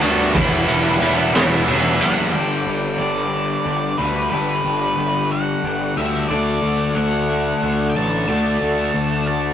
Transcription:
Already playing: overdriven electric guitar G2 D3, distorted electric guitar D3
0.01 picked electric bass D2, overdriven electric guitar B3 D4, lead electric guitar F#4 F#5, ride
0.06 overdriven electric guitar G3
0.34 picked electric bass E1, overdriven electric guitar E3 G3 B3, lead electric guitar E4 E5, kick, ride
0.38 overdriven electric guitar E4
0.67 picked electric bass E1, distorted electric guitar G3 B3 E4, ride
1.00 picked electric bass E1, overdriven electric guitar E3 G3 B3 E4, ride
1.33 overdriven electric guitar E3 G3 B3 E4, lead electric guitar E5, snare, ride
1.65 picked electric bass E1, distorted electric guitar E3 G3 B3 E4, ride
1.99 picked electric bass F#1, overdriven electric guitar G3 B3 E4, lead electric guitar F#5, ride
2.33 picked electric bass G1, overdriven electric guitar G2 D3 G3, clean electric guitar G3 B3 D4 G4, lead electric guitar G5
2.67 picked electric bass G1, clean electric guitar G3 B3 D4 G4
2.99 picked electric bass G1, clean electric guitar G3 B3 D4 G4, lead electric guitar D5
3.32 clean electric guitar G3 B3 D4 G4
3.65 picked electric bass G1, clean electric guitar G3 B3 D4 G4
3.98 picked electric bass D2, overdriven electric guitar G2 D3 G3, lead electric guitar B4
4.30 picked electric bass G1, overdriven electric guitar G2 D3, clean electric guitar G3 B3 D4 G4, lead electric guitar B4
4.34 overdriven electric guitar G3
4.64 picked electric bass G1, clean electric guitar G3 B3 D4 G4
4.97 picked electric bass G1, clean electric guitar G3 B3 D4 G4
5.31 clean electric guitar G3 B3 D4 G4, lead electric guitar F#5
5.64 picked electric bass G1, clean electric guitar G3 B3 D4 G4
5.97 picked electric bass D2, overdriven electric guitar G2 D3 G3, lead electric guitar E5
6.28 picked electric bass D2, overdriven electric guitar D3 A3 D4, clean electric guitar D3 A3 D4 F#4, lead electric guitar D5
6.62 picked electric bass D2, clean electric guitar D3 A3 D4 F#4
6.95 picked electric bass D2, clean electric guitar D3 A3 D4 F#4, lead electric guitar F#5
7.29 clean electric guitar D3 A3 D4 F#4
7.62 picked electric bass D2, clean electric guitar D3 A3 D4 F#4
7.90 lead electric guitar G5
7.95 picked electric bass A1, overdriven electric guitar D3 A3 D4, lead electric guitar A5
8.28 picked electric bass D2, clean electric guitar D3 A3 D4 F#4, overdriven electric guitar D3 A3, lead electric guitar A5
8.32 overdriven electric guitar D4
8.62 picked electric bass D2, clean electric guitar D3 A3 D4 F#4
8.94 picked electric bass D2, clean electric guitar D3 A3 D4 F#4
9.28 clean electric guitar D3 A3 D4 F#4, lead electric guitar A5

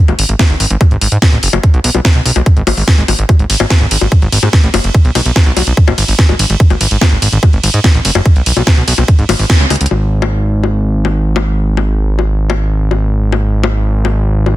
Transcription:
0.08 analog synth bass G#1, closed hi-hat, high bongo
0.19 analog synth bass G#1, open hi-hat
0.29 analog synth bass G#1, closed hi-hat
0.39 kick, snare, closed hi-hat, high bongo
0.50 analog synth bass G#1, closed hi-hat
0.60 analog synth bass G#1, open hi-hat
0.70 analog synth bass G#1, closed hi-hat
0.81 kick, closed hi-hat, high bongo
0.91 analog synth bass G#1, closed hi-hat
1.01 analog synth bass G#1, open hi-hat
1.12 analog synth bass G#2, closed hi-hat
1.22 kick, snare, closed hi-hat, high bongo
1.32 analog synth bass A1, closed hi-hat
1.43 analog synth bass F#1, open hi-hat
1.53 analog synth bass F#1, closed hi-hat, high bongo
1.63 kick, closed hi-hat
1.74 analog synth bass B1, closed hi-hat
1.84 analog synth bass B1, open hi-hat
1.95 analog synth bass B1, closed hi-hat, high bongo
2.05 kick, snare, closed hi-hat
2.15 analog synth bass B1, closed hi-hat
2.26 analog synth bass B1, open hi-hat
2.36 analog synth bass B1, closed hi-hat, high bongo
2.46 kick, closed hi-hat
2.57 analog synth bass G#1, closed hi-hat
2.67 analog synth bass G#1, open hi-hat, high bongo
2.77 analog synth bass G#1, open hi-hat
2.88 kick, snare
2.98 analog synth bass G#1, closed hi-hat
3.08 analog synth bass G#1, open hi-hat, high bongo
3.19 analog synth bass G#1, closed hi-hat
3.29 kick, closed hi-hat, high bongo
3.39 analog synth bass G#1, closed hi-hat
3.50 analog synth bass G#1, open hi-hat, ride
3.60 analog synth bass G#1, closed hi-hat, high bongo
3.70 kick, snare, closed hi-hat
3.81 analog synth bass G#1, closed hi-hat
3.91 analog synth bass G#1, open hi-hat, ride
4.01 analog synth bass G#1, closed hi-hat, high bongo
4.12 kick, closed hi-hat
4.22 analog synth bass G#1, closed hi-hat
4.32 analog synth bass G#1, open hi-hat, ride
4.43 analog synth bass G#2, closed hi-hat, high bongo
4.53 kick, snare, closed hi-hat
4.63 analog synth bass A1, closed hi-hat
4.74 analog synth bass F#1, open hi-hat, ride, high bongo
4.84 analog synth bass F#1, closed hi-hat
4.95 kick, closed hi-hat
5.05 analog synth bass B1, closed hi-hat
5.15 analog synth bass B1, open hi-hat, ride, high bongo
5.26 analog synth bass B1, closed hi-hat
5.36 kick, snare, closed hi-hat
5.46 analog synth bass B1, closed hi-hat
5.57 analog synth bass B1, open hi-hat, ride, high bongo
5.67 analog synth bass B1, closed hi-hat
5.77 kick, closed hi-hat
5.88 analog synth bass G#1, closed hi-hat, high bongo
5.98 analog synth bass G#1, open hi-hat, ride
6.08 analog synth bass G#1, open hi-hat
6.19 kick, snare
6.29 analog synth bass G#1, closed hi-hat, high bongo
6.39 analog synth bass G#1, open hi-hat, ride
6.50 analog synth bass G#1, closed hi-hat
6.60 kick, closed hi-hat
6.70 analog synth bass G#1, closed hi-hat, high bongo
6.81 analog synth bass G#1, open hi-hat, ride
6.91 analog synth bass G#1, closed hi-hat
7.01 kick, snare, closed hi-hat, high bongo
7.12 analog synth bass G#1, closed hi-hat
7.22 analog synth bass G#1, open hi-hat, ride
7.32 analog synth bass G#1, closed hi-hat
7.43 kick, closed hi-hat, high bongo
7.53 analog synth bass G#1, closed hi-hat
7.63 analog synth bass G#1, open hi-hat, ride
7.74 analog synth bass G#2, closed hi-hat
7.84 kick, snare, closed hi-hat, high bongo
7.95 analog synth bass A1, closed hi-hat
8.05 analog synth bass F#1, open hi-hat, ride
8.15 analog synth bass F#1, high bongo
8.26 kick, closed hi-hat
8.36 analog synth bass B1, closed hi-hat
8.46 analog synth bass B1, open hi-hat, ride
8.57 analog synth bass B1, closed hi-hat, high bongo
8.67 kick, snare, closed hi-hat
8.77 analog synth bass B1, closed hi-hat
8.88 analog synth bass B1, open hi-hat, ride
8.98 analog synth bass B1, closed hi-hat, high bongo
9.08 kick, closed hi-hat
9.19 analog synth bass G#1, closed hi-hat
9.29 analog synth bass G#1, open hi-hat, ride, high bongo
9.39 analog synth bass G#1, open hi-hat
9.50 kick, snare
9.60 analog synth bass C#2, closed hi-hat
9.70 analog synth bass C#2, closed hi-hat, open hi-hat, high bongo
9.76 closed hi-hat
9.81 analog synth bass C#2, closed hi-hat
9.86 closed hi-hat
9.91 analog synth bass G#1, high bongo
10.22 high bongo
10.63 high bongo
11.05 high bongo
11.36 high bongo
11.77 high bongo
12.19 high bongo
12.50 high bongo
12.91 high bongo
13.32 high bongo
13.64 high bongo
14.05 high bongo
14.46 high bongo

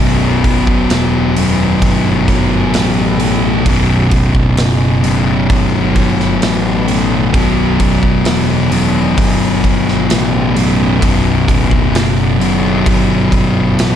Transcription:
Already playing: distorted electric guitar B1
0.00 picked electric bass B0, distorted electric guitar F#2 B2
0.44 kick, open hi-hat
0.67 kick
0.90 picked electric bass E1, snare, open hi-hat
1.36 distorted electric guitar B1 F#2 B2, open hi-hat
1.82 picked electric bass G1, kick, open hi-hat
2.28 kick, open hi-hat
2.74 picked electric bass A1, snare, open hi-hat
3.19 distorted electric guitar B1 F#2 B2, open hi-hat
3.66 picked electric bass B0, distorted electric guitar B1 F#2 B2, kick, open hi-hat
4.11 picked electric bass D1, kick, open hi-hat
4.35 kick
4.57 picked electric bass F#1, snare, open hi-hat
5.03 distorted electric guitar B1 F#2 B2, open hi-hat
5.50 picked electric bass G1, kick, open hi-hat
5.96 kick, open hi-hat
6.20 snare
6.42 picked electric bass A1, snare, open hi-hat
6.87 distorted electric guitar B1 F#2 B2, open hi-hat
7.33 picked electric bass B0, distorted electric guitar B1 F#2 B2, kick, open hi-hat
7.80 kick, open hi-hat
8.03 kick
8.25 picked electric bass E1, snare, open hi-hat
8.71 distorted electric guitar B1 F#2 B2, open hi-hat
9.18 picked electric bass G1, kick, open hi-hat
9.64 kick, open hi-hat
9.89 snare
10.10 picked electric bass A1, snare, open hi-hat
10.56 distorted electric guitar B1 F#2 B2, open hi-hat
11.01 picked electric bass B0, distorted electric guitar B1 F#2 B2, kick, open hi-hat
11.48 picked electric bass D1, kick, open hi-hat
11.71 kick
11.94 picked electric bass F#1, snare, open hi-hat
12.38 distorted electric guitar B1 F#2 B2, open hi-hat
12.86 picked electric bass G1, kick, open hi-hat
13.32 kick, open hi-hat
13.79 picked electric bass A1, snare, open hi-hat

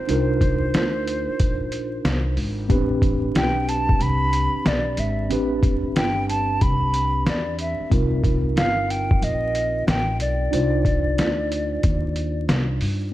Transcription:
Already playing: flute C5
0.07 upright bass C2, tine electric piano D4 D#4 F4 A#4, closed hi-hat
0.41 kick, closed hi-hat
0.74 upright bass D2, snare, closed hi-hat
1.07 closed hi-hat
1.28 muted upright bass stroke
1.40 upright bass A#1, kick, closed hi-hat
1.72 closed hi-hat
2.05 upright bass C2, snare, closed hi-hat
2.37 upright bass G#1, open hi-hat
2.68 upright bass A1, tine electric piano B3 D4 G4 B4, kick, closed hi-hat
2.75 tine electric piano C4
3.02 kick, closed hi-hat
3.35 upright bass B1, flute G5, snare, closed hi-hat
3.69 flute A5, closed hi-hat
3.89 kick
4.00 upright bass C2, flute B5, closed hi-hat
4.33 closed hi-hat
4.54 muted upright bass stroke
4.65 upright bass B1, flute D5, snare, closed hi-hat
4.97 upright bass G#1, flute E5, closed hi-hat
5.29 upright bass A1, tine electric piano C4 D4 G4 B4, closed hi-hat
5.63 kick, closed hi-hat
5.96 upright bass G1, flute G5, snare, closed hi-hat
6.29 flute A5, closed hi-hat
6.61 upright bass C2, flute B5, kick, closed hi-hat
6.94 closed hi-hat
7.26 upright bass E2, flute D5, snare, closed hi-hat
7.59 flute E5, closed hi-hat
7.80 muted upright bass stroke
7.90 upright bass C2, tine electric piano C4 D#4 F4 A#4, kick, closed hi-hat
8.24 kick, closed hi-hat
8.56 upright bass G1, flute F5, snare, closed hi-hat
8.90 flute G5, closed hi-hat
9.11 kick
9.22 upright bass A#1, flute D#5, closed hi-hat
9.55 closed hi-hat
9.87 upright bass A1, flute G5, snare, closed hi-hat
10.20 upright bass B1, flute D5, closed hi-hat
10.51 upright bass C2, tine electric piano D4 D#4 F4 C5, closed hi-hat
10.85 kick, closed hi-hat
11.18 upright bass D2, snare, closed hi-hat
11.52 closed hi-hat
11.83 upright bass D#2, kick, closed hi-hat
12.16 closed hi-hat
12.48 upright bass C2, snare, closed hi-hat
12.81 upright bass G2, open hi-hat

